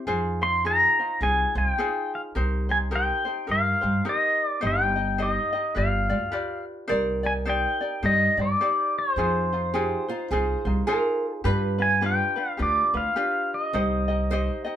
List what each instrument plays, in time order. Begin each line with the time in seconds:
0.07 upright bass F2, ukulele D#4 F4 G#4 C5
0.41 ukulele D#4 F4 C5, pedal steel guitar C6
0.65 ukulele D#4 F4 G#4 C5, pedal steel guitar A#5
0.99 ukulele D#4 F4 C5
1.21 upright bass C2, ukulele D#4 F4 G#4 C5, pedal steel guitar G#5
1.55 upright bass C2, ukulele D#4 F4 C5, pedal steel guitar G5
1.78 ukulele D#4 F4 G#4 C5
2.15 pedal steel guitar F5
2.35 upright bass C2, ukulele D#4 G4 A#4 C5
2.69 ukulele D#4 G4 C5, pedal steel guitar G#5
2.91 ukulele D#4 G4 A#4 C5
2.96 pedal steel guitar G5
3.25 ukulele D#4 G4 C5
3.47 upright bass G2, ukulele D#4 G4 A#4 C5
3.51 pedal steel guitar F5
3.81 upright bass G2, ukulele D#4 G4 C5
4.05 ukulele D#4 G4 A#4 C5
4.09 pedal steel guitar D#5
4.46 pedal steel guitar D5
4.61 upright bass G1, ukulele D#4 G4 C5 D#5
4.67 pedal steel guitar G5
4.96 ukulele D#4 G4 D#5
5.18 ukulele D#4 G4 C5 D#5
5.23 pedal steel guitar D#5
5.53 ukulele D#4 G4 D#5
5.75 upright bass G1, ukulele F4 G4 B4 D5, pedal steel guitar F5
6.09 upright bass D2, ukulele F4 G4 D5
6.32 ukulele F4 G4 B4 D5
6.88 upright bass C2, ukulele D#4 G4 C5 D5, nylon-string guitar A#4
7.23 ukulele D#4 G4 D5, pedal steel guitar G#5
7.45 ukulele D#4 G4 C5 D5
7.49 pedal steel guitar G5
7.81 ukulele D#4 G4 D5
8.03 upright bass G2, ukulele D#4 G4 C5 D5, pedal steel guitar D#5
8.37 upright bass G2, ukulele D#4 G4 D5
8.41 pedal steel guitar D5
8.61 ukulele D#4 G4 C5 D5
8.99 pedal steel guitar C5
9.16 upright bass F2, ukulele D#4 F4 G#4 C5, nylon-string guitar G#4
9.53 ukulele D#4 F4 C5
9.74 ukulele D#4 F4 G#4 C5, nylon-string guitar G4
10.08 ukulele D#4 F4 C5, nylon-string guitar F4
10.31 upright bass C2, ukulele D#4 F4 G#4 C5, nylon-string guitar G#4
10.65 upright bass C2, ukulele D#4 F4 C5
10.87 ukulele D#4 F4 G#4 C5, nylon-string guitar A#4
11.33 nylon-string guitar G#4
11.44 upright bass G2, ukulele D4 F4 G4 B4, nylon-string guitar B4
11.78 ukulele D4 F4 B4, pedal steel guitar G#5
12.01 ukulele D4 F4 G4 B4
12.06 pedal steel guitar G5
12.36 ukulele D4 F4 B4
12.50 pedal steel guitar F5
12.57 upright bass D2, ukulele D4 F4 G4 B4
12.62 pedal steel guitar D5
12.94 upright bass D2, ukulele D4 F4 B4, pedal steel guitar F5
13.16 ukulele D4 F4 G4 B4
13.54 pedal steel guitar D#5
13.73 upright bass C2, ukulele D#4 G4 C5 D#5, nylon-string guitar C5
14.08 ukulele D#4 G4 D#5
14.31 ukulele D#4 G4 C5 D#5, nylon-string guitar C5
14.65 ukulele D#4 G4 D#5